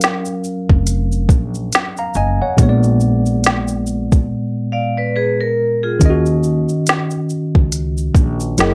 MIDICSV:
0, 0, Header, 1, 5, 480
1, 0, Start_track
1, 0, Key_signature, -6, "minor"
1, 0, Tempo, 857143
1, 1445, Time_signature, 4, 2, 24, 8
1, 4895, End_track
2, 0, Start_track
2, 0, Title_t, "Vibraphone"
2, 0, Program_c, 0, 11
2, 2645, Note_on_c, 0, 77, 69
2, 2649, Note_on_c, 0, 74, 59
2, 2777, Note_off_c, 0, 77, 0
2, 2780, Note_off_c, 0, 74, 0
2, 2786, Note_on_c, 0, 74, 71
2, 2789, Note_on_c, 0, 71, 63
2, 2881, Note_off_c, 0, 74, 0
2, 2882, Note_off_c, 0, 71, 0
2, 2888, Note_on_c, 0, 71, 79
2, 2892, Note_on_c, 0, 68, 69
2, 3019, Note_off_c, 0, 71, 0
2, 3021, Note_off_c, 0, 68, 0
2, 3027, Note_on_c, 0, 70, 81
2, 3254, Note_off_c, 0, 70, 0
2, 3266, Note_on_c, 0, 68, 72
2, 3270, Note_on_c, 0, 65, 61
2, 3494, Note_off_c, 0, 68, 0
2, 3495, Note_off_c, 0, 65, 0
2, 4895, End_track
3, 0, Start_track
3, 0, Title_t, "Tine electric piano"
3, 0, Program_c, 1, 4
3, 0, Control_c, 1, 64, 127
3, 0, Note_on_c, 1, 54, 80
3, 0, Note_on_c, 1, 61, 73
3, 0, Note_on_c, 1, 70, 71
3, 0, Note_on_c, 1, 77, 88
3, 955, Note_off_c, 1, 77, 0
3, 1113, Note_on_c, 1, 82, 62
3, 1115, Note_on_c, 1, 77, 54
3, 1204, Note_off_c, 1, 82, 0
3, 1205, Note_off_c, 1, 77, 0
3, 1212, Note_on_c, 1, 80, 70
3, 1214, Note_on_c, 1, 75, 61
3, 1342, Note_off_c, 1, 80, 0
3, 1343, Note_off_c, 1, 75, 0
3, 1353, Note_on_c, 1, 78, 60
3, 1356, Note_on_c, 1, 73, 53
3, 1418, Note_off_c, 1, 54, 0
3, 1424, Note_off_c, 1, 61, 0
3, 1429, Note_off_c, 1, 70, 0
3, 1438, Note_on_c, 1, 46, 76
3, 1449, Note_on_c, 1, 56, 66
3, 1453, Control_c, 1, 64, 0
3, 1460, Note_on_c, 1, 59, 68
3, 1465, Note_off_c, 1, 73, 0
3, 1471, Note_on_c, 1, 73, 68
3, 1501, Note_off_c, 1, 73, 0
3, 1507, Note_on_c, 1, 74, 84
3, 1567, Control_c, 1, 64, 127
3, 1577, Note_off_c, 1, 78, 0
3, 3339, Note_off_c, 1, 46, 0
3, 3344, Note_off_c, 1, 56, 0
3, 3350, Note_off_c, 1, 59, 0
3, 3357, Note_on_c, 1, 51, 78
3, 3369, Note_on_c, 1, 61, 67
3, 3372, Control_c, 1, 64, 0
3, 3374, Note_off_c, 1, 74, 0
3, 3380, Note_on_c, 1, 65, 57
3, 3391, Note_on_c, 1, 75, 86
3, 3415, Note_off_c, 1, 65, 0
3, 3416, Note_on_c, 1, 66, 75
3, 3484, Control_c, 1, 64, 127
3, 4779, Note_off_c, 1, 51, 0
3, 4785, Note_off_c, 1, 61, 0
3, 4796, Note_off_c, 1, 75, 0
3, 4804, Note_on_c, 1, 54, 84
3, 4808, Note_off_c, 1, 66, 0
3, 4809, Note_on_c, 1, 64, 72
3, 4811, Control_c, 1, 64, 0
3, 4812, Note_on_c, 1, 68, 74
3, 4817, Note_on_c, 1, 70, 72
3, 4821, Note_on_c, 1, 75, 84
3, 4895, Note_off_c, 1, 54, 0
3, 4895, Note_off_c, 1, 64, 0
3, 4895, Note_off_c, 1, 68, 0
3, 4895, Note_off_c, 1, 70, 0
3, 4895, Note_off_c, 1, 75, 0
3, 4895, End_track
4, 0, Start_track
4, 0, Title_t, "Upright bass"
4, 0, Program_c, 2, 32
4, 389, Note_on_c, 2, 29, 93
4, 705, Note_off_c, 2, 29, 0
4, 722, Note_on_c, 2, 34, 91
4, 947, Note_off_c, 2, 34, 0
4, 1205, Note_on_c, 2, 30, 92
4, 1335, Note_off_c, 2, 30, 0
4, 1446, Note_on_c, 2, 34, 111
4, 2383, Note_off_c, 2, 34, 0
4, 3366, Note_on_c, 2, 39, 97
4, 3723, Note_off_c, 2, 39, 0
4, 4229, Note_on_c, 2, 37, 80
4, 4545, Note_off_c, 2, 37, 0
4, 4563, Note_on_c, 2, 34, 91
4, 4787, Note_off_c, 2, 34, 0
4, 4809, Note_on_c, 2, 30, 98
4, 4895, Note_off_c, 2, 30, 0
4, 4895, End_track
5, 0, Start_track
5, 0, Title_t, "Drums"
5, 7, Note_on_c, 9, 42, 63
5, 7, Note_on_c, 9, 82, 64
5, 21, Note_on_c, 9, 38, 101
5, 63, Note_off_c, 9, 42, 0
5, 63, Note_off_c, 9, 82, 0
5, 77, Note_off_c, 9, 38, 0
5, 142, Note_on_c, 9, 82, 50
5, 198, Note_off_c, 9, 82, 0
5, 246, Note_on_c, 9, 82, 47
5, 302, Note_off_c, 9, 82, 0
5, 389, Note_on_c, 9, 36, 87
5, 445, Note_off_c, 9, 36, 0
5, 486, Note_on_c, 9, 42, 63
5, 486, Note_on_c, 9, 82, 69
5, 542, Note_off_c, 9, 42, 0
5, 542, Note_off_c, 9, 82, 0
5, 628, Note_on_c, 9, 82, 40
5, 684, Note_off_c, 9, 82, 0
5, 722, Note_on_c, 9, 36, 94
5, 726, Note_on_c, 9, 82, 52
5, 778, Note_off_c, 9, 36, 0
5, 782, Note_off_c, 9, 82, 0
5, 865, Note_on_c, 9, 82, 50
5, 921, Note_off_c, 9, 82, 0
5, 966, Note_on_c, 9, 42, 65
5, 966, Note_on_c, 9, 82, 68
5, 980, Note_on_c, 9, 38, 104
5, 1022, Note_off_c, 9, 42, 0
5, 1022, Note_off_c, 9, 82, 0
5, 1036, Note_off_c, 9, 38, 0
5, 1104, Note_on_c, 9, 82, 43
5, 1160, Note_off_c, 9, 82, 0
5, 1200, Note_on_c, 9, 82, 42
5, 1256, Note_off_c, 9, 82, 0
5, 1446, Note_on_c, 9, 36, 107
5, 1447, Note_on_c, 9, 42, 64
5, 1447, Note_on_c, 9, 82, 68
5, 1502, Note_off_c, 9, 36, 0
5, 1503, Note_off_c, 9, 42, 0
5, 1503, Note_off_c, 9, 82, 0
5, 1587, Note_on_c, 9, 82, 48
5, 1643, Note_off_c, 9, 82, 0
5, 1682, Note_on_c, 9, 82, 48
5, 1738, Note_off_c, 9, 82, 0
5, 1825, Note_on_c, 9, 82, 46
5, 1881, Note_off_c, 9, 82, 0
5, 1926, Note_on_c, 9, 42, 65
5, 1926, Note_on_c, 9, 82, 66
5, 1940, Note_on_c, 9, 38, 99
5, 1982, Note_off_c, 9, 42, 0
5, 1982, Note_off_c, 9, 82, 0
5, 1996, Note_off_c, 9, 38, 0
5, 2060, Note_on_c, 9, 82, 52
5, 2116, Note_off_c, 9, 82, 0
5, 2165, Note_on_c, 9, 82, 47
5, 2221, Note_off_c, 9, 82, 0
5, 2308, Note_on_c, 9, 36, 81
5, 2308, Note_on_c, 9, 82, 57
5, 2364, Note_off_c, 9, 36, 0
5, 2364, Note_off_c, 9, 82, 0
5, 3365, Note_on_c, 9, 36, 109
5, 3365, Note_on_c, 9, 42, 68
5, 3365, Note_on_c, 9, 82, 68
5, 3421, Note_off_c, 9, 36, 0
5, 3421, Note_off_c, 9, 42, 0
5, 3421, Note_off_c, 9, 82, 0
5, 3505, Note_on_c, 9, 82, 48
5, 3561, Note_off_c, 9, 82, 0
5, 3603, Note_on_c, 9, 82, 44
5, 3659, Note_off_c, 9, 82, 0
5, 3746, Note_on_c, 9, 82, 46
5, 3802, Note_off_c, 9, 82, 0
5, 3845, Note_on_c, 9, 42, 65
5, 3845, Note_on_c, 9, 82, 68
5, 3860, Note_on_c, 9, 38, 96
5, 3901, Note_off_c, 9, 42, 0
5, 3901, Note_off_c, 9, 82, 0
5, 3916, Note_off_c, 9, 38, 0
5, 3979, Note_on_c, 9, 82, 51
5, 4035, Note_off_c, 9, 82, 0
5, 4085, Note_on_c, 9, 82, 47
5, 4141, Note_off_c, 9, 82, 0
5, 4228, Note_on_c, 9, 36, 86
5, 4284, Note_off_c, 9, 36, 0
5, 4324, Note_on_c, 9, 42, 73
5, 4324, Note_on_c, 9, 82, 64
5, 4380, Note_off_c, 9, 42, 0
5, 4380, Note_off_c, 9, 82, 0
5, 4466, Note_on_c, 9, 82, 41
5, 4522, Note_off_c, 9, 82, 0
5, 4561, Note_on_c, 9, 36, 98
5, 4567, Note_on_c, 9, 82, 53
5, 4617, Note_off_c, 9, 36, 0
5, 4623, Note_off_c, 9, 82, 0
5, 4704, Note_on_c, 9, 82, 50
5, 4760, Note_off_c, 9, 82, 0
5, 4804, Note_on_c, 9, 42, 60
5, 4804, Note_on_c, 9, 82, 64
5, 4818, Note_on_c, 9, 38, 108
5, 4860, Note_off_c, 9, 42, 0
5, 4860, Note_off_c, 9, 82, 0
5, 4874, Note_off_c, 9, 38, 0
5, 4895, End_track
0, 0, End_of_file